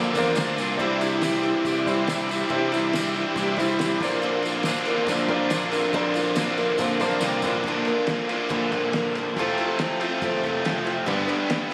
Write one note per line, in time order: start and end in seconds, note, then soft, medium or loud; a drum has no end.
0.00 0.12 A#1 loud
0.00 0.15 A#2 medium
0.00 0.15 D3 medium
0.00 0.35 D3 medium
0.00 0.14 F3 loud
0.00 0.16 A#3 medium
0.00 0.14 C4 medium
0.00 0.13 D4 loud
0.00 0.14 D4 medium
0.00 0.13 F4 medium
0.00 0.12 A#4 medium
0.00 0.76 A#4 medium
0.00 0.76 F5 medium
0.00 0.78 A#5 medium
0.00 0.76 D6 loud
0.14 0.35 E2 medium
0.14 0.34 F3 soft
0.14 0.36 A#3 medium
0.14 0.35 C4 soft
0.14 0.36 D4 medium
0.14 0.37 D4 medium
0.14 0.37 F4 medium
0.14 0.36 A#4 medium
0.14 0.73 A#4 medium
0.14 0.73 C5 medium
0.14 0.36 F5 medium
0.14 kick medium
0.14 tambourine medium
0.14 crash medium
0.18 0.73 D5 medium
0.35 0.56 D2 medium
0.35 0.78 A#2 medium
0.35 0.78 D3 medium
0.35 0.57 F3 medium
0.35 0.59 A#3 loud
0.35 0.58 C4 medium
0.35 0.58 D4 medium
0.35 0.56 F4 medium
0.35 0.57 A#4 medium
0.35 0.76 A#5 medium
0.35 snare loud
0.35 tambourine medium
0.35 crash medium
0.57 0.77 C2 medium
0.57 0.79 F3 medium
0.57 0.79 A#3 medium
0.57 0.79 C4 soft
0.57 0.80 D4 medium
0.57 0.78 D4 medium
0.57 0.78 F4 medium
0.57 0.80 A#4 medium
0.57 tambourine medium
0.57 crash medium
0.77 1.52 C2 medium
0.77 2.10 C3 medium
0.77 1.01 C3 medium
0.77 1.21 E3 medium
0.77 1.01 G3 medium
0.77 1.01 G3 loud
0.77 1.00 C4 loud
0.77 1.01 D4 medium
0.77 1.54 E4 medium
0.77 1.01 E4 medium
0.77 0.99 E4 loud
0.77 3.98 G4 medium
0.77 1.00 G4 medium
0.77 1.54 C5 medium
0.77 1.54 D5 medium
0.77 3.97 E5 medium
0.77 7.61 C6 medium
0.77 7.61 D6 medium
0.77 kick medium
0.77 crash medium
0.99 1.22 G3 medium
0.99 1.23 C4 medium
0.99 1.21 D4 soft
0.99 1.23 E4 medium
0.99 1.22 E4 medium
0.99 1.22 G4 medium
0.99 tambourine medium
0.99 crash medium
1.21 2.08 E3 medium
1.21 1.44 G3 medium
1.21 1.89 G3 medium
1.21 1.88 C4 medium
1.21 1.44 D4 medium
1.21 1.44 E4 medium
1.21 1.86 E4 medium
1.21 1.43 G4 medium
1.21 snare loud
1.21 tambourine medium
1.21 crash medium
1.43 1.64 D4 medium
1.43 1.64 E4 medium
1.43 1.64 G4 medium
1.43 tambourine soft
1.43 crash medium
1.65 1.83 C2 loud
1.65 1.87 C3 medium
1.65 1.87 G3 medium
1.65 1.87 D4 medium
1.65 1.87 E4 medium
1.65 1.86 G4 loud
1.65 kick loud
1.65 tambourine medium
1.65 crash medium
1.85 2.42 C2 medium
1.85 2.11 C4 medium
1.85 2.08 D4 soft
1.85 2.43 E4 medium
1.85 2.11 E4 medium
1.85 2.08 E4 medium
1.85 2.08 G4 medium
1.85 2.43 C5 medium
1.85 2.43 D5 medium
1.85 kick medium
1.85 tambourine medium
1.85 crash medium
1.90 2.09 G3 medium
2.07 2.49 C3 medium
2.07 2.50 E3 medium
2.07 2.30 G3 medium
2.07 2.31 G3 medium
2.07 2.31 C4 loud
2.07 2.29 D4 medium
2.07 2.29 E4 medium
2.07 2.28 G4 medium
2.07 snare loud
2.07 tambourine loud
2.07 crash medium
2.12 2.28 E4 loud
2.29 2.50 G3 medium
2.29 2.52 C4 medium
2.29 2.49 D4 soft
2.29 2.52 E4 medium
2.29 2.49 E4 medium
2.29 2.50 G4 medium
2.29 tambourine medium
2.29 crash medium
2.49 3.24 C2 medium
2.49 2.71 C3 medium
2.49 2.93 C3 medium
2.49 2.92 E3 loud
2.49 2.72 G3 medium
2.49 2.75 G3 medium
2.49 2.74 C4 loud
2.49 2.71 D4 medium
2.49 3.26 E4 medium
2.49 2.72 E4 medium
2.49 2.73 E4 loud
2.49 2.71 G4 medium
2.49 3.26 C5 medium
2.49 3.26 D5 medium
2.49 kick loud
2.49 crash medium
2.72 2.96 C4 medium
2.72 2.93 D4 medium
2.72 2.94 E4 medium
2.72 2.95 E4 medium
2.72 2.94 G4 medium
2.72 tambourine medium
2.72 crash medium
2.76 2.94 G3 medium
2.93 3.80 E3 medium
2.93 3.15 G3 medium
2.93 3.59 G3 medium
2.93 3.58 C4 medium
2.93 3.16 D4 medium
2.93 3.14 E4 medium
2.93 3.56 E4 medium
2.93 3.13 G4 medium
2.93 snare loud
2.93 tambourine loud
2.93 crash medium
3.14 3.37 D4 soft
3.14 3.37 E4 soft
3.14 3.36 G4 medium
3.14 tambourine soft
3.14 crash medium
3.36 3.55 C2 loud
3.36 3.58 C3 medium
3.36 3.58 G3 medium
3.36 3.58 D4 medium
3.36 3.57 E4 loud
3.36 3.56 G4 loud
3.36 kick loud
3.36 tambourine medium
3.36 crash medium
3.56 3.94 C2 medium
3.56 3.80 G3 medium
3.56 3.82 C4 medium
3.56 3.78 D4 soft
3.56 3.81 E4 medium
3.56 4.01 E4 medium
3.56 3.79 E4 medium
3.56 3.79 G4 medium
3.56 4.01 C5 medium
3.56 4.01 E5 medium
3.56 kick medium
3.56 tambourine medium
3.56 crash medium
3.79 4.00 C3 medium
3.79 4.00 E3 loud
3.79 4.01 G3 medium
3.79 4.01 G3 loud
3.79 4.00 C4 medium
3.79 4.01 D4 medium
3.79 4.01 E4 medium
3.79 4.01 G4 medium
3.79 snare loud
3.79 tambourine loud
3.79 crash medium
4.00 4.74 A#1 loud
4.00 4.21 A#2 medium
4.00 4.21 D3 medium
4.00 4.22 F3 medium
4.00 4.22 A#3 medium
4.00 4.22 C4 medium
4.00 4.23 D4 medium
4.00 4.23 F4 medium
4.00 7.62 A#4 medium
4.00 4.77 A#4 medium
4.00 4.23 A#4 medium
4.00 4.77 C5 medium
4.00 4.77 D5 loud
4.00 7.61 F5 medium
4.00 kick loud
4.00 tambourine medium
4.00 crash loud
4.21 5.50 A#2 medium
4.21 4.44 A#2 medium
4.21 4.64 D3 medium
4.21 4.44 D3 medium
4.21 4.44 F3 medium
4.21 4.46 A#3 loud
4.21 4.44 C4 medium
4.21 4.44 D4 loud
4.21 4.44 D4 medium
4.21 4.43 F4 loud
4.21 4.43 A#4 medium
4.21 crash medium
4.42 4.64 F3 soft
4.42 4.66 A#3 medium
4.42 4.65 C4 medium
4.42 4.67 D4 medium
4.42 4.65 D4 medium
4.42 4.68 F4 medium
4.42 4.66 A#4 medium
4.42 tambourine medium
4.42 crash medium
4.63 5.50 D3 medium
4.63 4.87 F3 medium
4.63 5.31 A#3 medium
4.63 4.87 C4 medium
4.63 4.87 D4 medium
4.63 snare loud
4.63 tambourine medium
4.63 crash medium
4.67 5.29 D4 medium
4.67 5.29 F4 medium
4.67 4.85 A#4 medium
4.85 5.07 C4 medium
4.85 5.08 D4 medium
4.85 5.08 A#4 medium
4.85 tambourine soft
4.85 crash medium
4.89 5.08 F3 soft
4.97 snare soft
5.07 5.26 A#1 loud
5.07 5.30 A#2 medium
5.07 5.30 D3 medium
5.07 5.29 F3 medium
5.07 5.28 C4 loud
5.07 5.28 D4 loud
5.07 5.27 A#4 medium
5.07 kick loud
5.07 tambourine medium
5.07 crash medium
5.28 5.84 A#1 medium
5.28 5.51 F3 soft
5.28 5.51 A#3 medium
5.28 5.51 C4 medium
5.28 5.51 D4 medium
5.28 5.52 F4 medium
5.28 5.50 A#4 medium
5.28 5.86 A#4 medium
5.28 5.87 C5 medium
5.28 5.86 D5 medium
5.28 kick medium
5.28 crash medium
5.50 5.92 A#2 medium
5.50 5.93 D3 medium
5.50 5.72 F3 medium
5.50 5.73 A#3 loud
5.50 5.71 C4 medium
5.50 5.73 D4 loud
5.50 5.71 D4 medium
5.50 5.71 F4 medium
5.50 5.71 A#4 medium
5.50 snare loud
5.50 tambourine loud
5.50 crash medium
5.71 5.93 F3 soft
5.71 5.93 A#3 medium
5.71 5.93 C4 medium
5.71 5.93 D4 medium
5.71 5.94 D4 medium
5.71 5.94 F4 medium
5.71 5.93 A#4 medium
5.71 tambourine medium
5.71 crash medium
5.93 6.67 A#1 loud
5.93 6.36 A#2 medium
5.93 6.15 A#2 medium
5.93 6.15 D3 medium
5.93 6.36 D3 loud
5.93 6.15 F3 medium
5.93 6.16 A#3 medium
5.93 6.14 C4 medium
5.93 6.13 D4 medium
5.93 6.16 D4 loud
5.93 6.14 F4 loud
5.93 6.69 A#4 medium
5.93 6.13 A#4 medium
5.93 6.69 C5 medium
5.93 6.70 D5 medium
5.93 kick loud
5.93 tambourine soft
5.93 crash medium
6.14 6.34 F3 medium
6.14 6.37 A#3 medium
6.14 6.35 C4 medium
6.14 6.35 D4 medium
6.14 6.38 D4 medium
6.14 6.39 F4 medium
6.14 6.36 A#4 medium
6.14 tambourine medium
6.14 crash medium
6.36 7.21 D3 medium
6.36 6.58 F3 medium
6.36 7.01 A#3 medium
6.36 6.58 C4 medium
6.36 6.58 D4 medium
6.36 7.00 D4 medium
6.36 6.57 A#4 medium
6.36 snare loud
6.36 tambourine loud
6.36 crash medium
6.40 6.99 F4 medium
6.57 6.76 F3 medium
6.57 6.78 C4 medium
6.57 6.78 D4 medium
6.57 6.78 A#4 medium
6.57 tambourine soft
6.57 crash medium
6.69 snare soft
6.78 6.98 A#1 medium
6.78 7.00 A#2 medium
6.78 7.00 D3 medium
6.78 7.00 F3 medium
6.78 7.01 C4 medium
6.78 7.00 D4 medium
6.78 6.99 A#4 loud
6.78 kick loud
6.78 tambourine medium
6.78 crash medium
7.00 7.19 A#1 loud
7.00 7.21 F3 medium
7.00 7.21 A#3 medium
7.00 7.22 C4 medium
7.00 7.23 D4 medium
7.00 7.22 D4 medium
7.00 7.22 F4 medium
7.00 7.22 A#4 medium
7.00 7.58 A#4 medium
7.00 7.57 C5 medium
7.00 7.58 D5 medium
7.00 7.21 A5 medium
7.00 kick medium
7.00 tambourine medium
7.00 crash medium
7.11 snare soft
7.21 7.42 C2 medium
7.21 7.64 A#2 medium
7.21 7.64 D3 medium
7.21 7.44 F3 medium
7.21 7.45 A#3 medium
7.21 7.44 C4 medium
7.21 7.44 D4 medium
7.21 7.45 D4 medium
7.21 7.42 F4 loud
7.21 7.44 A#4 medium
7.21 7.63 G5 medium
7.21 snare medium
7.21 tambourine loud
7.42 7.63 A#1 medium
7.42 7.65 D4 medium
7.42 7.66 D4 medium
7.42 7.64 F4 medium
7.42 7.66 A#4 medium
7.42 mid tom loud
7.42 tambourine medium
7.46 7.67 F3 soft
7.46 7.65 A#3 medium
7.46 7.67 C4 medium
7.53 floor tom medium
7.63 7.83 A#1 medium
7.63 8.28 A#2 medium
7.63 7.88 A#2 medium
7.63 8.29 D3 medium
7.63 7.88 D3 medium
7.63 8.29 A#3 medium
7.63 8.28 D4 medium
7.63 kick medium
7.63 crash medium
7.68 7.88 F3 medium
7.68 7.87 A#3 medium
7.68 7.87 D4 medium
7.68 8.29 F4 loud
7.68 7.86 A#4 medium
7.85 8.07 A#3 soft
7.85 8.08 D4 medium
7.85 8.08 A#4 medium
7.85 ride medium
7.89 8.07 F3 soft
8.07 8.30 F3 medium
8.07 8.30 A#3 medium
8.07 8.29 D4 medium
8.07 8.28 A#4 medium
8.07 snare loud
8.07 ride medium
8.29 9.36 A#2 medium
8.29 9.37 D3 medium
8.29 8.48 F3 soft
8.29 9.36 A#3 medium
8.29 8.49 A#3 soft
8.29 9.36 D4 medium
8.29 8.50 D4 medium
8.29 9.36 F4 medium
8.29 8.50 A#4 medium
8.29 ride medium
8.49 8.69 A#1 loud
8.49 8.72 A#2 medium
8.49 8.72 D3 medium
8.49 8.72 F3 medium
8.49 8.72 A#3 medium
8.49 8.71 D4 medium
8.49 8.71 A#4 medium
8.49 kick loud
8.49 ride medium
8.72 9.27 A#1 medium
8.72 8.93 F3 soft
8.72 8.93 A#3 soft
8.72 8.94 D4 medium
8.72 8.94 A#4 medium
8.72 kick medium
8.72 ride medium
8.93 9.16 F3 medium
8.93 9.16 A#3 medium
8.93 9.16 D4 medium
8.93 9.15 A#4 medium
8.93 snare loud
8.93 ride medium
9.15 9.37 F3 soft
9.15 9.38 A#3 soft
9.15 9.38 D4 medium
9.15 9.37 A#4 medium
9.15 ride medium
9.36 9.55 F1 medium
9.36 10.00 F2 medium
9.36 10.00 C3 medium
9.36 10.00 F3 medium
9.36 9.59 F3 medium
9.36 10.00 A3 medium
9.36 10.00 C4 medium
9.36 9.60 C4 medium
9.36 9.99 F4 medium
9.36 9.58 F4 medium
9.36 9.58 A4 medium
9.36 kick medium
9.36 ride medium
9.58 9.79 C4 soft
9.58 9.80 F4 medium
9.58 9.79 A4 medium
9.58 ride medium
9.79 10.01 F3 medium
9.79 10.02 C4 medium
9.79 10.02 F4 medium
9.79 10.01 A4 medium
9.79 snare loud
9.79 ride medium
10.00 11.06 F2 medium
10.00 11.06 C3 medium
10.00 11.07 F3 medium
10.00 11.07 A3 medium
10.00 11.07 C4 medium
10.00 10.22 C4 medium
10.00 11.07 F4 medium
10.00 10.23 F4 medium
10.00 10.22 A4 medium
10.00 ride medium
10.22 10.40 F1 medium
10.22 10.44 F3 medium
10.22 10.44 C4 medium
10.22 10.44 F4 medium
10.22 10.43 A4 medium
10.22 kick loud
10.22 ride medium
10.34 snare soft
10.43 10.99 F1 medium
10.43 10.64 C4 soft
10.43 10.65 F4 soft
10.43 10.65 A4 medium
10.43 kick medium
10.43 ride medium
10.65 10.87 F3 medium
10.65 10.85 C4 medium
10.65 10.85 F4 medium
10.65 10.83 A4 medium
10.65 snare loud
10.65 ride medium
10.84 11.07 C4 soft
10.84 11.07 F4 medium
10.84 11.07 A4 medium
10.84 ride medium
11.06 11.26 G1 medium
11.06 11.29 G2 medium
11.06 11.70 G2 medium
11.06 11.29 D3 medium
11.06 11.71 D3 medium
11.06 11.28 G3 medium
11.06 11.73 G3 medium
11.06 11.28 B3 medium
11.06 11.71 B3 medium
11.06 11.27 D4 medium
11.06 11.71 D4 medium
11.06 11.72 G4 loud
11.06 11.26 B4 medium
11.06 kick medium
11.06 ride medium
11.27 11.48 G3 soft
11.27 11.48 B3 soft
11.27 11.50 D4 medium
11.27 11.50 B4 medium
11.27 ride medium
11.50 11.72 G3 medium
11.50 11.71 B3 medium
11.50 11.70 D4 medium
11.50 11.69 B4 medium
11.50 snare loud
11.50 ride medium
11.70 11.74 B4 medium